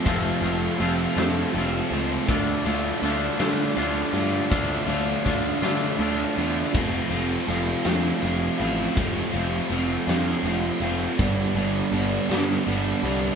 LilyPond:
<<
  \new Staff \with { instrumentName = "Distorted electric guitar" } { \time 6/8 \key f \lydian \tempo 4. = 54 <f a c' f'>8 <a c' f'>8 <f a c' f'>8 <a c' f'>8 <f a c' f'>8 <a c' f'>8 | <d a d' f'>8 <a d' f'>8 <d a d' f'>8 <a d' f'>8 <d a d' f'>8 <a d' f'>8 | <d a d' f'>8 <a d' f'>8 <d a d' f'>8 <a d' f'>8 <d a d' f'>8 <a d' f'>8 | <f a c' f'>8 <a c' f'>8 <f a c' f'>8 <a c' f'>8 <f a c' f'>8 <a c' f'>8 |
<f a c' f'>8 <a c' f'>8 <f a c' f'>8 <a c' f'>8 <f a c' f'>8 <a c' f'>8 | <g, d g b d'>8 <g b d'>8 <d g b d'>8 <g b d'>8 <d g b d'>8 <g b d'>8 | }
  \new Staff \with { instrumentName = "Overdriven electric guitar" } { \time 6/8 \key f \lydian <f a c' f' a'>8 <c' f' a'>8 <a c' f' a'>8 <c' f' a'>8 <a c' f' a'>8 <c' f' a'>8 | <d a d' f'>8 <a d' f'>8 <d a d' f'>8 <a d' f'>8 <d a d' f'>8 <a d' f'>8 | <d a d' f'>8 <a d' f'>8 <d a d' f'>8 <a d' f'>8 <d a d' f'>8 <a d' f'>8 | <f a c' f'>8 <a c' f'>8 <f a c' f'>8 <a c' f'>8 <f a c' f'>8 <a c' f'>8 |
<f a c' f'>8 <a c' f'>8 <f a c' f'>8 <a c' f'>8 <f a c' f'>8 <a c' f'>8 | <g, d g b d'>8 <g b d'>8 <d g b d'>8 <g b d'>8 <d g b d'>8 <g b d'>8 | }
  \new Staff \with { instrumentName = "Clean electric guitar" } { \time 6/8 \key f \lydian <f, c f a c' f'>8 <f a c' f'>8 <f a c' f'>8 <f, c f a c' f'>8 <f a c' f'>4 | <d a d' f'>8 <a d' f'>8 <d a d' f'>8 <d a d' f'>8 <d a d' f'>4 | <d a d' f'>8 <a d' f'>8 <d a d' f'>8 <d a d' f'>8 <d a d' f'>4 | r2. |
r2. | r2. | }
  \new Staff \with { instrumentName = "Picked electric bass" } { \clef bass \time 6/8 \key f \lydian f,,8 f,,8 f,,8 f,8 f,,8 des,8 | d,8 d,8 d,8 d8 d,8 g,8 | d,8 d,8 d,8 d8 d,8 e,8 | f,,8 f,,8 f,,8 f,8 f,,8 a,,8 |
f,,8 f,,8 f,,8 f,8 f,,8 f,,8 | g,,8 g,,8 g,,8 g,8 g,,8 c,8 | }
  \new DrumStaff \with { instrumentName = "Drums" } \drummode { \time 6/8 <bd cymr>8 cymr8 cymr8 <cymr sn>8 cymr8 cymr8 | <bd cymr>8 cymr8 cymr8 <cymr sn>8 cymr8 cymr8 | <bd cymr>8 cymr8 <bd cymr>8 <cymr sn>8 cymr8 cymr8 | <cymc bd>8 cymr8 cymr8 <cymr sn>8 cymr8 cymr8 |
<bd cymr>8 cymr8 cymr8 <cymr sn>8 cymr8 cymr8 | <bd cymr>8 cymr8 cymr8 <cymr sn>8 cymr8 cymr8 | }
>>